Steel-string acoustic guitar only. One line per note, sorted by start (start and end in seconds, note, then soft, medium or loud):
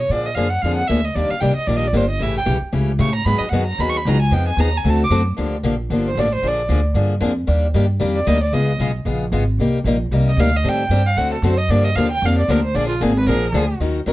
0.11 0.28 D3 medium
0.11 0.29 F3 medium
0.11 0.29 A#3 medium
0.11 0.29 D4 medium
0.11 0.29 G#4 medium
0.36 0.46 D3 medium
0.36 0.46 F3 medium
0.36 0.46 A#3 medium
0.36 0.46 D4 medium
0.36 0.46 G#4 loud
0.64 0.81 D3 medium
0.64 0.81 F3 medium
0.64 0.82 A#3 medium
0.64 0.82 D4 medium
0.64 0.82 G#4 medium
0.89 0.99 D3 medium
0.89 0.99 F3 medium
0.89 0.99 A#3 medium
0.89 0.99 D4 medium
0.89 0.99 G#4 medium
1.16 1.33 D#3 medium
1.16 1.33 G3 medium
1.16 1.34 A#3 medium
1.16 1.34 D4 medium
1.16 1.34 G4 medium
1.41 1.51 D#3 medium
1.41 1.51 G3 medium
1.41 1.51 A#3 medium
1.41 1.52 D4 medium
1.41 1.52 G4 medium
1.68 1.86 D#3 medium
1.68 1.86 G3 medium
1.68 1.86 A#3 medium
1.68 1.86 D4 medium
1.68 1.86 G4 medium
1.93 2.04 D#3 medium
1.93 2.04 G3 medium
1.93 2.04 A#3 medium
1.93 2.04 D4 loud
1.93 2.04 G4 medium
2.19 2.38 C#3 medium
2.19 2.38 E3 medium
2.19 2.38 A3 medium
2.19 2.38 C#4 medium
2.19 2.39 G4 medium
2.46 2.56 C#3 medium
2.46 2.56 E3 medium
2.46 2.57 A3 medium
2.46 2.56 C#4 medium
2.46 2.56 G4 loud
2.72 2.91 C#3 medium
2.72 2.91 E3 medium
2.72 2.91 A3 medium
2.72 2.91 C#4 medium
2.72 2.91 G4 medium
2.99 3.09 C#3 medium
2.99 3.09 E3 medium
2.99 3.10 A3 medium
2.99 3.10 C#4 medium
2.99 3.10 G4 medium
3.26 3.44 D#3 medium
3.26 3.44 F#3 medium
3.26 3.44 B3 medium
3.26 3.44 D#4 medium
3.26 3.45 G#4 medium
3.52 3.62 D#3 medium
3.52 3.63 F#3 medium
3.52 3.62 B3 loud
3.52 3.63 D#4 medium
3.52 3.63 G#4 medium
3.79 3.97 D#3 medium
3.79 3.97 F#3 medium
3.79 3.97 B3 medium
3.79 3.98 D#4 medium
3.79 3.98 G#4 medium
4.06 4.16 D#3 medium
4.06 4.16 F#3 medium
4.06 4.16 B3 medium
4.06 4.16 D#4 medium
4.06 4.16 G#4 medium
4.31 4.49 F3 medium
4.31 4.50 B3 medium
4.31 4.50 D#4 medium
4.31 4.50 G#4 medium
4.58 4.68 F3 medium
4.58 4.68 B3 medium
4.58 4.68 D#4 medium
4.58 4.69 G#4 medium
4.85 5.02 D3 medium
4.85 5.03 A3 medium
4.85 5.03 C4 medium
4.85 5.03 F#4 medium
4.85 5.03 A4 medium
5.11 5.20 D3 medium
5.11 5.21 A3 medium
5.11 5.21 C4 medium
5.11 5.21 F#4 loud
5.11 5.21 A4 loud
5.37 5.55 D3 medium
5.37 5.55 F3 medium
5.37 5.55 A#3 medium
5.37 5.55 D4 medium
5.37 5.56 G4 medium
5.63 5.73 D3 medium
5.63 5.74 F3 medium
5.63 5.74 A#3 medium
5.63 5.74 D4 medium
5.63 5.74 G4 medium
5.90 6.08 D3 medium
5.90 6.08 F3 medium
5.90 6.09 A#3 medium
5.90 6.09 D4 medium
5.90 6.09 G4 medium
6.17 6.27 D3 medium
6.17 6.27 F3 medium
6.17 6.27 A#3 medium
6.17 6.27 D4 medium
6.17 6.27 G4 medium
6.42 6.60 D3 medium
6.42 6.61 F3 medium
6.42 6.61 A#3 medium
6.42 6.61 D4 medium
6.42 6.61 G#4 medium
6.69 6.79 D3 medium
6.69 6.79 F3 medium
6.69 6.79 A#3 medium
6.69 6.79 D4 medium
6.69 6.80 G#4 medium
6.95 7.13 D3 medium
6.95 7.13 F3 medium
6.95 7.13 A#3 medium
6.95 7.14 D4 medium
6.95 7.14 G#4 medium
7.20 7.31 D3 medium
7.20 7.31 F3 medium
7.20 7.31 A#3 medium
7.20 7.31 D4 medium
7.20 7.32 G#4 medium
7.47 7.66 D#3 medium
7.47 7.66 G3 medium
7.47 7.66 A#3 medium
7.47 7.66 D4 medium
7.47 7.66 G4 medium
7.74 7.84 D#3 medium
7.74 7.84 G3 medium
7.74 7.84 A#3 medium
7.74 7.85 D4 medium
7.74 7.85 G4 loud
8.00 8.18 D#3 medium
8.00 8.18 G3 medium
8.00 8.19 A#3 medium
8.00 8.19 D4 medium
8.00 8.19 G4 medium
8.27 8.37 D#3 medium
8.27 8.37 G3 medium
8.27 8.37 A#3 medium
8.27 8.37 D4 medium
8.27 8.37 G4 medium
8.52 8.71 C#3 medium
8.52 8.71 G#3 medium
8.52 8.72 B3 medium
8.52 8.71 F4 medium
8.52 8.72 G#4 medium
8.80 8.90 C#3 medium
8.80 8.90 G#3 medium
8.80 8.90 B3 medium
8.80 8.90 F4 medium
8.80 8.90 G#4 medium
9.05 9.24 C#3 medium
9.05 9.24 G#3 medium
9.05 9.24 B3 medium
9.05 9.25 F4 medium
9.05 9.25 G#4 medium
9.32 9.42 C#3 medium
9.32 9.43 G#3 medium
9.32 9.43 B3 medium
9.32 9.43 F4 medium
9.32 9.43 G#4 medium
9.59 9.77 C3 medium
9.59 9.77 G3 medium
9.59 9.78 A#3 medium
9.59 9.78 D#4 medium
9.59 9.78 G4 medium
9.85 9.95 C3 medium
9.85 9.96 G3 medium
9.85 9.96 A#3 medium
9.85 9.96 D#4 medium
9.85 9.96 G4 medium
10.12 10.30 C3 medium
10.12 10.30 G3 medium
10.12 10.30 A#3 medium
10.12 10.30 D#4 medium
10.12 10.30 G4 medium
10.39 10.49 C3 medium
10.39 10.48 G3 medium
10.39 10.49 A#3 medium
10.39 10.49 D#4 medium
10.39 10.49 G4 loud
10.64 10.82 D#3 medium
10.64 10.82 G3 medium
10.64 10.83 C4 medium
10.64 10.83 G4 medium
10.64 10.83 A4 medium
10.91 11.01 D#3 medium
10.91 11.01 G3 medium
10.91 11.01 C4 medium
10.91 11.01 G4 medium
10.91 11.01 A4 medium
11.17 11.35 D3 medium
11.17 11.35 A3 medium
11.17 11.36 C4 medium
11.17 11.36 F#4 medium
11.17 11.36 A4 medium
11.43 11.53 D3 medium
11.43 11.54 A3 medium
11.43 11.54 C4 medium
11.43 11.54 F#4 medium
11.43 11.54 A4 medium
11.70 11.88 D3 medium
11.70 11.88 F3 medium
11.70 11.88 A#3 medium
11.70 11.89 D4 medium
11.70 11.89 G4 medium
11.97 12.06 D3 medium
11.97 12.06 F3 medium
11.97 12.07 A#3 medium
11.97 12.07 D4 medium
11.97 12.07 G4 medium
12.24 12.41 D3 medium
12.24 12.41 F3 medium
12.24 12.42 A#3 medium
12.24 12.42 D4 medium
12.24 12.42 G4 medium
12.49 12.59 D3 loud
12.49 12.59 F3 loud
12.49 12.59 A#3 medium
12.49 12.59 D4 medium
12.49 12.59 G4 loud
12.74 12.93 D3 medium
12.74 12.93 F3 medium
12.74 12.93 A#3 medium
12.74 12.93 D4 medium
12.74 12.94 G#4 medium
13.01 13.11 D3 medium
13.01 13.11 F3 medium
13.01 13.12 A#3 medium
13.01 13.12 D4 medium
13.01 13.12 G#4 medium
13.28 13.46 D3 medium
13.28 13.46 F3 medium
13.28 13.46 A#3 medium
13.28 13.46 D4 medium
13.28 13.46 G#4 medium
13.54 13.64 D3 medium
13.54 13.64 F3 loud
13.54 13.64 A#3 medium
13.54 13.64 D4 medium
13.54 13.65 G#4 medium
13.80 13.99 D#3 medium
13.80 13.99 F#3 medium
13.80 13.99 C#4 medium
13.80 13.99 D#4 medium
13.80 13.99 A#4 medium
14.06 14.13 D#3 medium
14.06 14.13 F#3 medium
14.06 14.13 C#4 medium
14.06 14.13 D#4 medium
14.06 14.13 A#4 medium